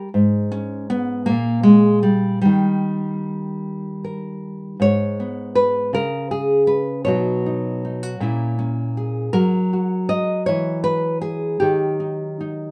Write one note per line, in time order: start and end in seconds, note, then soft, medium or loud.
0.14 1.28 G#2 medium
0.52 0.89 C#4 medium
0.90 1.28 B3 medium
1.26 2.40 A#2 medium
1.26 1.63 A#3 medium
1.63 2.02 G#3 medium
2.03 2.40 G3 medium
2.42 4.76 D#3 medium
2.42 4.79 G3 medium
4.04 4.76 A#4 soft
4.80 5.94 G#2 medium
4.80 5.55 C#5 loud
5.20 5.95 B3 soft
5.55 5.93 B4 medium
5.93 7.06 C#3 medium
5.93 6.31 A#4 medium
6.31 6.67 G#4 medium
6.67 7.04 B4 medium
7.05 8.14 B2 medium
7.05 8.19 F#3 soft
7.05 7.45 D#4 soft
7.05 7.82 F#4 soft
7.05 8.94 C#5 medium
7.46 7.84 D#4 soft
7.85 8.03 D#4 soft
8.03 8.20 F#4 soft
8.20 9.28 A#2 medium
8.20 9.29 A#3 soft
8.20 8.57 C#4 soft
8.20 9.30 E4 soft
8.59 9.29 C#4 medium
8.97 9.34 G#4 soft
9.33 12.71 F#3 medium
9.33 10.46 A#4 loud
9.73 10.43 F#4 soft
10.09 10.46 D#5 loud
10.46 11.57 E3 medium
10.46 10.83 C#5 loud
10.84 11.21 B4 loud
11.21 11.60 G#4 medium
11.60 12.71 D#3 medium
11.60 12.71 G4 medium
12.00 12.38 D#4 soft
12.40 12.71 D#4 soft